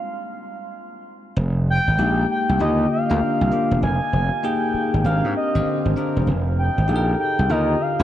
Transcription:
Already playing: analog synth lead F5
1.36 slap bass F1
1.70 analog synth lead G5
1.87 slap bass G#1
1.98 slap bass A#1, tine electric piano G#3 A#3 D#4 G4
2.31 analog synth lead G5
2.49 slap bass C2
2.59 slap bass D#2, tine electric piano D3 A#3 F4 G4, analog synth lead D#5
2.92 analog synth lead F5
3.09 slap bass D2, tine electric piano A#3 D4 F4 A#4
3.22 muted slap bass stroke
3.41 slap bass C2
3.51 tine electric piano A#3 D4 F4 G4
3.71 slap bass E1
3.83 slap bass F1, analog synth lead G#5
4.13 slap bass F1
4.43 tine electric piano A#3 D#4 G4 G#4, analog synth lead G5
4.74 muted slap bass stroke
4.94 slap bass G#1
5.04 slap bass G#1, tine electric piano C4 D4 G4 A#4, analog synth lead F5
5.24 slap bass G#2
5.37 analog synth lead D#5
5.55 slap bass G#1, tine electric piano D3 C4 G4 C5
5.85 slap bass G#1
5.96 tine electric piano C4 D4 G4 A#4
6.16 slap bass E1
6.27 slap bass F1
6.59 analog synth lead G5
6.78 slap bass G#1
6.88 slap bass A#1, tine electric piano D#4 G4 G#4 A4
6.96 tine electric piano A#4
7.20 analog synth lead G5
7.39 slap bass C2
7.49 slap bass D#2, tine electric piano D3 F4 G4 A#4, analog synth lead D#5
7.82 analog synth lead F5
8.00 slap bass D2, tine electric piano D4 F4

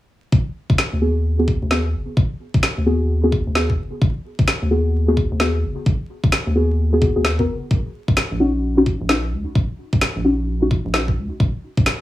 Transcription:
0.32 analog synth bass G#1, kick
0.70 analog synth bass G#1, kick
0.78 snare
0.93 analog synth bass D#2
1.01 synth stab B3 F#4 G#4
1.39 synth stab B3 F#4 G#4
1.48 kick
1.62 analog synth bass D#2
1.71 synth stab B3 F#4 G#4, snare
1.94 analog synth bass F#1
2.17 analog synth bass G#1, kick
2.54 analog synth bass G#1, kick
2.63 snare
2.77 analog synth bass D#2
2.86 synth stab B3 F#4 G#4
3.23 synth stab B3 F#4 G#4
3.32 kick
3.47 analog synth bass D#2
3.55 synth stab B3 F#4 G#4, snare
3.70 kick
3.78 analog synth bass F#1
4.02 analog synth bass G#1, kick
4.39 analog synth bass G#1, kick
4.48 snare
4.62 analog synth bass D#2
4.71 synth stab B3 F#4 G#4
5.08 synth stab B3 F#4 G#4
5.17 kick
5.31 analog synth bass D#2
5.40 synth stab B3 F#4 G#4, snare
5.63 analog synth bass F#1
5.86 analog synth bass G#1, kick
6.24 analog synth bass G#1, kick
6.32 snare
6.47 analog synth bass D#2
6.55 synth stab B3 F#4 G#4
6.93 synth stab B3 F#4 G#4
7.01 synth stab B3 F#4 G#4, kick
7.16 analog synth bass D#2, synth stab B3 F#4 G#4
7.25 snare
7.39 synth stab B3 F#4 A#4, kick
7.48 analog synth bass F#1
7.71 analog synth bass D#1, kick
8.08 analog synth bass D#1, kick
8.17 snare
8.31 analog synth bass A#1
8.40 synth stab C#4 D#4 F#4
8.77 synth stab C#4 D#4 F#4
8.86 kick
9.01 analog synth bass A#1
9.09 synth stab C#4 D#4 F#4, snare
9.32 analog synth bass C#2
9.55 analog synth bass D#1, kick
9.93 analog synth bass D#1, kick
10.01 snare
10.16 analog synth bass A#1
10.24 synth stab C#4 D#4 F#4
10.62 synth stab C#4 D#4 F#4
10.71 kick
10.85 analog synth bass A#1
10.94 synth stab C#4 D#4 F#4, snare
11.08 kick
11.17 analog synth bass C#2
11.40 analog synth bass D#1, kick
11.77 analog synth bass D#1, kick
11.86 snare

